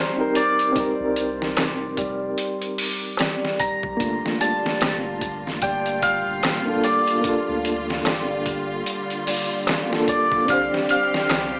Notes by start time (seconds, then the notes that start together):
Already playing: G3 A#4 C5 F5
0.17 C4 D#4 G4 A#4
0.35 D5, closed hi-hat
0.59 closed hi-hat
0.72 G3 C4 D#4, kick, closed hi-hat
0.78 G4 A#4
1.00 C2
1.16 closed hi-hat
1.42 snare
1.57 F1, snare, closed hi-hat, darbuka tek
1.97 G3, kick, closed hi-hat
2.38 closed hi-hat
2.62 closed hi-hat
2.78 open hi-hat
3.17 G3, snare, closed hi-hat, darbuka tek
3.45 snare
3.60 D#1 A#5, kick, closed hi-hat
3.83 C2, kick
3.97 G1 A#2 D3 G3 A#3 D4 F4, kick, closed hi-hat
4.02 A3 F4
4.26 snare
4.40 G3 A5, closed hi-hat
4.66 snare
4.81 G1, snare, closed hi-hat, darbuka tek
5.21 kick, closed hi-hat
5.47 snare
5.62 G1 G3 G5, kick, closed hi-hat
5.86 closed hi-hat
6.02 F5, kick, closed hi-hat
6.27 G1
6.43 snare, closed hi-hat, darbuka tek
6.65 A#3 D4 F4 A4
6.84 G3 D5, closed hi-hat
7.07 closed hi-hat
7.21 A#3 D4, kick, closed hi-hat
7.26 F4 A4
7.49 D2
7.65 closed hi-hat
7.90 snare
8.05 G1 G3, snare, closed hi-hat, darbuka tek
8.46 kick, closed hi-hat
8.86 closed hi-hat
9.10 closed hi-hat
9.27 G3, open hi-hat
9.67 snare, closed hi-hat, darbuka tek
9.90 A#3 D4 F4 A4, snare
10.08 D1 D5, kick, closed hi-hat
10.32 kick
10.45 C2 G3 C4 D4 G4, kick, closed hi-hat
10.50 G4 C5 F5
10.74 snare
10.89 F5, closed hi-hat
11.14 snare
11.29 C2, snare, closed hi-hat, darbuka tek